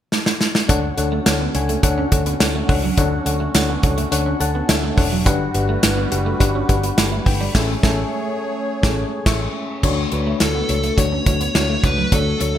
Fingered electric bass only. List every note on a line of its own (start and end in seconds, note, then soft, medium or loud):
0.69 0.90 D2 loud
0.98 1.18 D2 medium
1.26 1.47 D2 loud
1.55 1.75 C#2 medium
1.83 2.04 D2 loud
2.12 2.33 D2 loud
2.40 2.61 D2 medium
2.69 2.90 C#2 medium
2.98 3.18 D2 loud
3.26 3.47 D2 medium
3.55 3.75 D2 loud
3.83 4.04 C#2 medium
4.12 4.32 D2 loud
4.40 4.61 D2 medium
4.69 4.90 D2 medium
4.98 5.26 E1 medium
5.26 5.47 G1 loud
5.55 5.75 G1 loud
5.83 6.04 G1 loud
6.12 6.33 F#1 medium
6.41 6.61 G1 loud
6.69 6.90 G1 medium
6.98 7.18 G1 medium
7.26 7.47 G1 medium
7.55 7.74 A1 loud
7.83 8.03 A1 medium
8.83 9.03 A1 medium
9.26 9.46 A1 loud
9.83 10.04 D2 loud
10.12 10.33 D2 medium
10.41 10.61 D2 medium
10.69 10.90 C#2 medium
10.98 11.18 D2 medium
11.26 11.47 D2 loud
11.55 11.75 D2 medium
11.84 12.04 C#2 medium
12.12 12.33 D2 medium
12.41 12.58 D2 medium